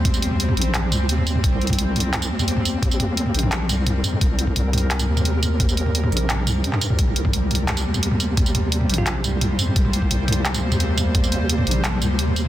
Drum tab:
HH |x-----------x-----------x-----------x--x--------x-----------------------x-----------x-----------|x-----------x---x---x---x-----------x--x--------x-----------------------x-----------x-----------|x-----------x-----------x-----------x--x--------x-----------------------x-----------x-----------|x-----------x-----------x-----------x--x--------x-----------------------x-----------x-----------|
TB |------x-----------------------------------------------------x-----------------------x-----------|------------------------------------------------------x-----------x-----------------x-----------|------x-----------------------------------------------------x-----------------------x-----------|------------------------------------------------------x-----------x-----------------x-----------|
CP |------------------------------------------------x-----------------------------------------------|------------------------------------------------x-----------------------------------------------|------------------------------------------------x-----------------------------------------------|------------------------------------------------x-----------------------------------------------|
T2 |o-----------------o-----------o-----------------o-----------o-----------------o-----------o-----|------o-----------o-----------------o-----------o-----------------o-----------o-----------------|o-----------o-----------------o-----------o-----------------o-----------o-----------------o-----|------------------------o-----------o-----------------o-----------o-----------------o-----------|
BD |o-----------------------------------------------------------------------------------------------|o-----------------o-----------------------------------------------------------------------------|o-----------------------------------------------------------------------------------------------|o-----------------o-----------------------------------------------------------------------------|

HH |x-----------x-----------x-----------x--x--------x-----------------------x-----------x-----------|x-----------x-----------x-----------x--x--------x-----------------------x-----------x-----------|x-----------x-----------x-----------x--x--------x-----------------------x-----------x-----------|x-----------x-----------x-----------x--x--------x-----------------------x-----------x-----------|
TB |------x-----------------------------------------------------x-----------------------x-----------|------------------------------------------------------x-----------x-----------------x-----------|------x-----------------------------------------------------x-----------------------x-----------|------------------------------------------------------x-----------x-----------------x-----------|
CP |------------------------------------------------x-----------------------------x-----------------|------------------------------------------------x-----------------------------------------------|------------------------------------------------x-----------------------------------------------|------------------------------------------------x-----------------------------------------------|
T2 |o-----------------o-----------o-----------------o-----------o-----------------o-----------o-----|------o-----------o-----------------o-----------o-----------------o-----------o-----------------|o-----------o-----------------o-----------o-----------------o-----------o-----------------o-----|------o-----------------o-----------o-----------------o-----------o-----------------o-----------|
BD |o-----------------------------------------------------------------------------------------------|o-----------------o-----------------------------------------------------------------------------|o-----------------------------------------------------------------------------------------------|o-----------------o-----------------------------------------------------------------------------|

HH |x-----------x-----------x-----------x--x--------x-----------------------x-----------x-----------|
TB |------x-----------------------------------------------------x-----------------------x-----------|
CP |------------------------------------------------x-----------------------------------------------|
T2 |o-----------------------------o-----------------o-----------o-----------------o-----------o-----|
BD |o-----------------------------------------------------------------------------------------------|